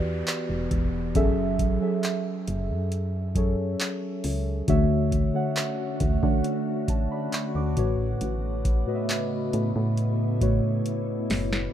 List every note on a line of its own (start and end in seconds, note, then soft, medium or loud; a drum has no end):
0.00 0.23 E2 loud
0.00 1.18 E3 medium
0.00 1.17 B3 medium
0.00 1.17 F#4 medium
0.00 1.18 G4 medium
0.00 1.18 B4 medium
0.00 1.17 D5 loud
0.00 downlifter medium
0.27 clap loud
0.27 closed hi-hat medium
0.49 0.68 E1 medium
0.71 1.17 E1 loud
0.71 kick medium
0.71 closed hi-hat medium
1.15 1.73 F#1 loud
1.15 1.67 F#3 loud
1.15 1.67 C#4 loud
1.15 1.68 G#4 loud
1.15 1.68 A4 loud
1.15 1.68 E5 loud
1.15 kick loud
1.15 closed hi-hat medium
1.59 kick loud
1.59 closed hi-hat medium
1.81 3.03 F#3 medium
1.81 3.03 C#4 medium
1.81 3.04 G#4 medium
1.81 3.04 A4 medium
1.81 3.04 E5 loud
2.03 clap loud
2.03 closed hi-hat medium
2.48 2.71 F#1 medium
2.48 closed hi-hat medium
2.70 3.76 F#2 loud
2.92 closed hi-hat medium
3.35 4.40 F#3 medium
3.35 4.40 C#4 medium
3.35 4.40 G#4 medium
3.35 4.41 A4 medium
3.35 4.41 C#5 medium
3.35 kick loud
3.35 closed hi-hat medium
3.80 clap loud
3.80 closed hi-hat medium
4.24 4.62 C#2 medium
4.24 open hi-hat medium
4.68 5.25 D2 loud
4.68 5.20 D3 loud
4.68 7.74 D3 medium
4.68 5.20 A3 loud
4.68 7.74 A3 medium
4.68 7.74 C#4 medium
4.68 9.50 F#4 medium
4.68 5.21 F#4 loud
4.68 5.21 C#5 loud
4.68 5.21 E5 loud
4.68 kick loud
4.68 closed hi-hat medium
5.12 kick medium
5.12 closed hi-hat medium
5.34 6.04 D3 medium
5.34 6.04 A3 medium
5.34 6.04 F#4 medium
5.34 6.04 C#5 medium
5.34 6.05 F#5 loud
5.56 clap loud
5.56 closed hi-hat medium
6.00 6.20 D2 loud
6.00 kick loud
6.00 closed hi-hat medium
6.22 6.75 D3 medium
6.22 7.29 D3 loud
6.22 6.75 A3 medium
6.22 6.75 F#4 medium
6.22 6.75 C#5 medium
6.22 6.76 F#5 medium
6.22 kick loud
6.44 closed hi-hat medium
6.88 7.10 C#5 medium
6.88 7.10 A5 medium
6.88 kick medium
6.88 closed hi-hat medium
7.11 7.32 D5 medium
7.11 7.32 B5 medium
7.33 7.55 E5 medium
7.33 7.54 C#6 medium
7.33 clap loud
7.33 closed hi-hat medium
7.55 7.79 D2 medium
7.55 7.97 F#5 medium
7.55 7.97 D6 medium
7.77 8.15 A1 loud
7.77 8.65 A2 medium
7.77 11.70 C#3 medium
7.77 11.70 A3 medium
7.77 8.65 A3 medium
7.77 11.70 B3 medium
7.77 8.65 F#4 medium
7.77 8.66 B4 medium
7.77 8.66 C#5 loud
7.77 kick loud
7.77 closed hi-hat medium
8.21 8.79 A1 loud
8.21 closed hi-hat medium
8.65 kick loud
8.65 closed hi-hat medium
8.87 10.09 A2 medium
8.87 10.09 A3 medium
8.87 10.09 F#4 medium
8.87 10.09 B4 medium
8.87 8.94 D#5 medium
8.95 10.13 E5 medium
9.09 clap loud
9.09 closed hi-hat medium
9.53 9.73 A2 loud
9.53 11.72 E4 medium
9.53 closed hi-hat medium
9.76 10.82 A2 loud
9.97 closed hi-hat medium
10.41 11.46 A2 medium
10.41 11.46 A3 medium
10.41 11.46 F#4 medium
10.41 11.46 B4 medium
10.41 11.47 C#5 loud
10.41 kick medium
10.41 closed hi-hat medium
10.86 closed hi-hat medium
11.30 11.68 F#1 loud
11.30 snare medium
11.30 open hi-hat medium
11.53 snare loud